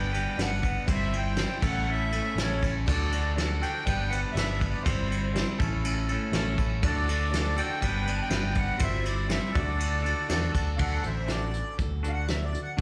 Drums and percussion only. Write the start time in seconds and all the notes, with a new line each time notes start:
0.14 ride
0.39 snare, ride
0.63 kick, ride
0.88 kick, ride
1.13 ride
1.36 snare, ride
1.62 kick, crash
2.12 ride
2.38 snare, ride
2.63 kick, ride
2.88 kick, crash
3.12 ride
3.38 snare, ride
3.63 ride
3.87 kick, ride
4.12 ride
4.37 snare, ride
4.61 kick, ride
4.86 kick, ride
5.12 ride
5.35 snare, ride
5.60 kick, ride
5.85 ride
6.09 ride
6.33 snare, ride
6.58 kick, ride
6.83 kick, ride
7.09 ride
7.33 snare, ride
7.57 ride
7.82 kick, ride
8.07 ride
8.30 snare, ride
8.55 kick, ride
8.79 kick, ride
9.05 ride
9.29 snare, ride
9.55 kick, ride
9.80 ride
10.06 ride
10.29 snare, ride
10.55 kick, ride
10.79 kick, crash
11.03 closed hi-hat
11.28 snare, closed hi-hat
11.53 closed hi-hat
11.78 kick, closed hi-hat
12.04 closed hi-hat
12.28 snare, closed hi-hat
12.54 closed hi-hat